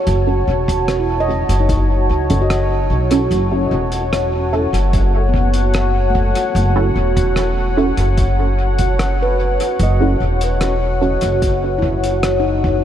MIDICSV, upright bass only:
0, 0, Header, 1, 2, 480
1, 0, Start_track
1, 0, Tempo, 810811
1, 41, Time_signature, 4, 2, 24, 8
1, 7602, End_track
2, 0, Start_track
2, 0, Title_t, "Upright bass"
2, 0, Program_c, 0, 32
2, 41, Note_on_c, 0, 30, 92
2, 253, Note_off_c, 0, 30, 0
2, 282, Note_on_c, 0, 28, 74
2, 860, Note_off_c, 0, 28, 0
2, 882, Note_on_c, 0, 30, 78
2, 1236, Note_off_c, 0, 30, 0
2, 1240, Note_on_c, 0, 37, 77
2, 1348, Note_off_c, 0, 37, 0
2, 1360, Note_on_c, 0, 30, 86
2, 1697, Note_off_c, 0, 30, 0
2, 1716, Note_on_c, 0, 35, 80
2, 1931, Note_off_c, 0, 35, 0
2, 1958, Note_on_c, 0, 30, 93
2, 2171, Note_off_c, 0, 30, 0
2, 2198, Note_on_c, 0, 28, 76
2, 2778, Note_off_c, 0, 28, 0
2, 2800, Note_on_c, 0, 30, 75
2, 3738, Note_off_c, 0, 30, 0
2, 3877, Note_on_c, 0, 30, 95
2, 4091, Note_off_c, 0, 30, 0
2, 4118, Note_on_c, 0, 28, 75
2, 4698, Note_off_c, 0, 28, 0
2, 4721, Note_on_c, 0, 30, 78
2, 5659, Note_off_c, 0, 30, 0
2, 5799, Note_on_c, 0, 30, 97
2, 6012, Note_off_c, 0, 30, 0
2, 6040, Note_on_c, 0, 28, 76
2, 6619, Note_off_c, 0, 28, 0
2, 6643, Note_on_c, 0, 30, 80
2, 7580, Note_off_c, 0, 30, 0
2, 7602, End_track
0, 0, End_of_file